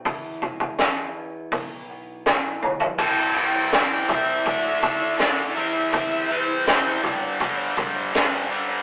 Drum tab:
CC |----------------|x---------------|----------------|
HH |o---o---o---o---|----o---o---o---|o---o---o---o---|
SD |----o-------o---|----o-------o---|----o-------o---|
T1 |--------------o-|----------------|----------------|
FT |---------------o|----------------|----------------|
BD |o-oo----o-------|o-----o-o-o-----|o-----o-o-o-----|